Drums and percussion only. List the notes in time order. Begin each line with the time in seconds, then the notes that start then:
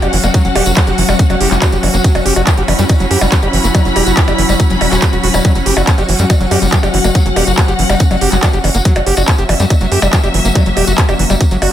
0.02 closed hi-hat, tambourine, percussion blips
0.13 open hi-hat
0.24 closed hi-hat, tambourine, percussion blips
0.34 kick, closed hi-hat, tambourine
0.45 closed hi-hat, tambourine
0.56 open hi-hat, percussion blips
0.66 closed hi-hat, tambourine
0.76 kick, clap, closed hi-hat, tambourine, percussion blips
0.87 closed hi-hat, tambourine
0.98 open hi-hat
1.09 tambourine, percussion blips
1.19 kick, closed hi-hat, tambourine
1.30 closed hi-hat, tambourine, percussion blips
1.41 open hi-hat
1.51 clap, closed hi-hat, tambourine
1.62 kick, clap, closed hi-hat, tambourine, percussion blips
1.72 closed hi-hat, tambourine
1.83 open hi-hat, percussion blips
1.94 closed hi-hat, tambourine
2.04 kick, closed hi-hat, tambourine
2.15 closed hi-hat, tambourine, percussion blips
2.26 open hi-hat
2.36 closed hi-hat, tambourine, percussion blips
2.47 kick, clap, closed hi-hat, tambourine
2.57 closed hi-hat, tambourine
2.68 open hi-hat, percussion blips
2.79 closed hi-hat, tambourine
2.89 kick, closed hi-hat, tambourine, percussion blips
3.00 closed hi-hat, tambourine
3.11 open hi-hat
3.21 closed hi-hat, tambourine, percussion blips
3.32 kick, clap, closed hi-hat, tambourine
3.42 closed hi-hat, tambourine, percussion blips
3.53 open hi-hat
3.64 closed hi-hat, tambourine
3.75 kick, closed hi-hat, tambourine, percussion blips
3.85 closed hi-hat, tambourine
3.96 open hi-hat, percussion blips
4.07 closed hi-hat, tambourine
4.17 kick, clap, closed hi-hat, tambourine
4.28 closed hi-hat, tambourine, percussion blips
4.38 open hi-hat
4.49 closed hi-hat, tambourine, percussion blips
4.60 kick, closed hi-hat, tambourine
4.70 closed hi-hat, tambourine
4.81 open hi-hat, percussion blips
4.92 clap, closed hi-hat, tambourine
5.02 kick, clap, closed hi-hat, tambourine, percussion blips
5.13 closed hi-hat, tambourine
5.24 open hi-hat
5.34 tambourine, percussion blips
5.44 kick, closed hi-hat, tambourine, percussion blips
5.55 closed hi-hat, tambourine
5.66 open hi-hat
5.77 tambourine, percussion blips
5.87 kick, clap, closed hi-hat, tambourine
5.98 closed hi-hat, tambourine, percussion blips
6.09 open hi-hat
6.19 closed hi-hat, tambourine
6.30 kick, closed hi-hat, tambourine, percussion blips
6.40 closed hi-hat, tambourine
6.51 open hi-hat, percussion blips
6.62 closed hi-hat, tambourine
6.72 kick, clap, closed hi-hat, tambourine
6.83 closed hi-hat, tambourine, percussion blips
6.94 open hi-hat
7.04 closed hi-hat, tambourine, percussion blips
7.15 kick, closed hi-hat, tambourine
7.26 closed hi-hat, tambourine
7.36 open hi-hat, percussion blips
7.47 closed hi-hat, tambourine
7.58 kick, clap, closed hi-hat, tambourine, percussion blips
7.68 closed hi-hat, tambourine
7.79 open hi-hat
7.90 closed hi-hat, tambourine, percussion blips
8.00 kick, closed hi-hat, tambourine
8.11 closed hi-hat, tambourine, percussion blips
8.21 open hi-hat
8.32 clap, closed hi-hat, tambourine
8.43 kick, clap, closed hi-hat, tambourine, percussion blips
8.53 closed hi-hat, tambourine
8.64 open hi-hat, percussion blips
8.74 closed hi-hat, tambourine
8.85 kick, closed hi-hat, tambourine
8.95 closed hi-hat, tambourine, percussion blips
9.07 open hi-hat
9.17 closed hi-hat, tambourine, percussion blips
9.27 kick, clap, closed hi-hat, tambourine
9.38 closed hi-hat, tambourine
9.49 open hi-hat, percussion blips
9.60 closed hi-hat, tambourine
9.70 kick, closed hi-hat, tambourine, percussion blips
9.81 closed hi-hat, tambourine
9.92 open hi-hat
10.02 tambourine, percussion blips
10.13 kick, clap, closed hi-hat, tambourine
10.24 closed hi-hat, tambourine, percussion blips
10.34 open hi-hat
10.45 closed hi-hat, tambourine
10.55 kick, closed hi-hat, tambourine, percussion blips
10.66 closed hi-hat, tambourine
10.77 open hi-hat, percussion blips
10.87 closed hi-hat, tambourine
10.98 kick, clap, closed hi-hat, tambourine
11.09 closed hi-hat, tambourine, percussion blips
11.19 open hi-hat
11.30 closed hi-hat, tambourine, percussion blips
11.41 kick, closed hi-hat, tambourine
11.51 closed hi-hat, tambourine
11.62 open hi-hat, percussion blips